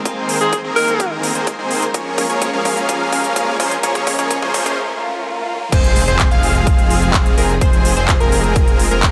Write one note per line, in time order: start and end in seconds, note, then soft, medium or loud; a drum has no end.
0.00 5.68 G#3 medium
0.00 1.91 C4 medium
0.00 5.69 A#4 medium
0.00 riser medium
0.05 0.38 D#3 medium
0.05 0.38 A#3 medium
0.05 0.38 C4 medium
0.05 0.38 G#4 medium
0.05 0.38 C5 medium
0.05 kick loud
0.05 closed hi-hat medium
0.29 open hi-hat loud
0.41 0.61 D#3 medium
0.41 0.61 A#3 medium
0.41 0.61 C4 medium
0.41 0.57 G#4 medium
0.41 0.61 G#4 medium
0.41 0.61 C5 medium
0.41 closed hi-hat medium
0.53 kick loud
0.53 closed hi-hat medium
0.64 1.32 D#3 loud
0.64 1.33 A#3 medium
0.64 1.33 C4 medium
0.64 1.32 G#4 medium
0.64 1.33 A#4 loud
0.76 1.12 A#4 loud
0.76 open hi-hat loud
0.88 closed hi-hat medium
1.00 kick loud
1.00 closed hi-hat medium
1.23 open hi-hat loud
1.35 1.55 D#3 medium
1.35 1.55 A#3 medium
1.35 1.55 C4 medium
1.35 1.55 G#4 medium
1.35 1.55 C5 medium
1.35 closed hi-hat soft
1.47 kick loud
1.47 closed hi-hat medium
1.59 1.85 D#3 medium
1.59 1.85 A#3 medium
1.59 1.85 C4 medium
1.59 1.85 G#4 medium
1.59 1.85 C5 loud
1.71 open hi-hat loud
1.82 closed hi-hat medium
1.94 2.27 F3 medium
1.94 2.27 A#3 medium
1.94 2.27 C#4 medium
1.94 5.69 C#4 medium
1.94 2.27 G#4 medium
1.94 2.27 C#5 loud
1.94 kick loud
1.94 closed hi-hat medium
2.18 kick loud
2.18 open hi-hat loud
2.30 2.50 F3 medium
2.30 2.50 A#3 medium
2.30 2.50 C#4 medium
2.30 2.50 G#4 medium
2.30 2.50 C#5 loud
2.30 closed hi-hat medium
2.42 kick loud
2.42 closed hi-hat medium
2.53 3.57 F3 medium
2.53 3.57 A#3 medium
2.53 3.57 C#4 medium
2.53 3.57 G#4 medium
2.53 3.57 F5 loud
2.65 kick loud
2.65 open hi-hat loud
2.77 closed hi-hat medium
2.89 kick loud
2.89 closed hi-hat medium
3.12 kick loud
3.12 open hi-hat loud
3.24 closed hi-hat soft
3.36 kick loud
3.36 closed hi-hat medium
3.60 3.76 F3 medium
3.60 3.76 A#3 medium
3.60 3.76 C#4 medium
3.60 3.76 G#4 medium
3.60 3.76 C5 medium
3.60 kick loud
3.60 open hi-hat medium
3.71 closed hi-hat medium
3.83 4.16 F3 medium
3.83 4.16 A#3 medium
3.83 4.16 C#4 medium
3.83 4.16 G#4 medium
3.83 4.16 C#5 medium
3.83 kick loud
3.83 closed hi-hat medium
3.95 kick medium
3.95 closed hi-hat soft
4.07 kick loud
4.07 open hi-hat loud
4.19 4.39 F3 medium
4.19 4.39 A#3 medium
4.19 4.39 C#4 medium
4.19 4.39 G#4 medium
4.19 4.39 C#5 medium
4.19 kick medium
4.19 closed hi-hat medium
4.31 kick loud
4.31 closed hi-hat medium
4.42 4.78 F3 loud
4.42 4.78 A#3 medium
4.42 4.78 C#4 medium
4.42 4.78 G#4 medium
4.42 4.78 C5 loud
4.42 kick medium
4.54 kick loud
4.54 open hi-hat loud
4.66 kick medium
4.66 closed hi-hat medium
4.78 swell medium
5.72 6.05 F1 medium
5.72 6.05 F3 medium
5.72 9.11 F3 medium
5.72 6.05 G#3 medium
5.72 6.05 C4 medium
5.72 9.11 C4 medium
5.72 6.05 G#4 medium
5.72 9.11 G#4 medium
5.72 6.05 C5 loud
5.72 kick loud
5.72 closed hi-hat medium
5.72 crash loud
5.72 impact medium
5.84 closed hi-hat soft
5.96 open hi-hat loud
6.08 6.29 F1 loud
6.08 6.28 F3 loud
6.08 6.28 G#3 medium
6.08 6.28 C4 medium
6.08 6.28 G#4 medium
6.08 6.28 C5 loud
6.08 closed hi-hat soft
6.19 kick loud
6.19 clap loud
6.19 closed hi-hat medium
6.31 7.35 F1 medium
6.31 7.35 F3 medium
6.31 7.35 G#3 medium
6.31 7.35 C4 medium
6.31 7.35 G#4 medium
6.31 7.35 F5 loud
6.31 closed hi-hat soft
6.43 open hi-hat loud
6.55 closed hi-hat soft
6.67 kick loud
6.67 closed hi-hat medium
6.79 closed hi-hat soft
6.90 open hi-hat loud
7.02 closed hi-hat soft
7.14 kick loud
7.14 clap loud
7.14 closed hi-hat medium
7.26 closed hi-hat soft
7.38 7.59 F1 medium
7.38 7.54 F3 medium
7.38 7.54 G#3 medium
7.38 7.54 C4 medium
7.38 7.54 G#4 medium
7.38 7.54 A#4 medium
7.38 open hi-hat loud
7.49 closed hi-hat soft
7.61 7.94 F1 loud
7.61 7.94 F3 medium
7.61 7.94 G#3 medium
7.61 7.94 C4 medium
7.61 7.94 G#4 medium
7.61 7.94 C5 medium
7.61 kick loud
7.61 closed hi-hat medium
7.73 closed hi-hat soft
7.85 open hi-hat loud
7.97 8.18 F1 loud
7.97 8.17 F3 medium
7.97 8.17 G#3 medium
7.97 8.17 C4 medium
7.97 8.17 G#4 medium
7.97 8.17 C5 medium
7.97 closed hi-hat soft
8.08 kick loud
8.08 clap loud
8.08 closed hi-hat medium
8.20 8.89 F1 medium
8.20 8.88 F3 loud
8.20 8.88 G#3 medium
8.20 8.88 C4 medium
8.20 8.88 G#4 medium
8.20 8.88 A#4 loud
8.20 closed hi-hat soft
8.32 open hi-hat loud
8.44 closed hi-hat soft
8.56 kick loud
8.56 closed hi-hat medium
8.68 closed hi-hat soft
8.79 open hi-hat loud
8.91 9.11 F1 medium
8.91 9.11 F3 loud
8.91 9.11 G#3 medium
8.91 9.11 C4 medium
8.91 9.11 G#4 medium
8.91 9.11 A#4 loud
8.91 closed hi-hat soft
9.03 kick loud
9.03 clap loud
9.03 closed hi-hat medium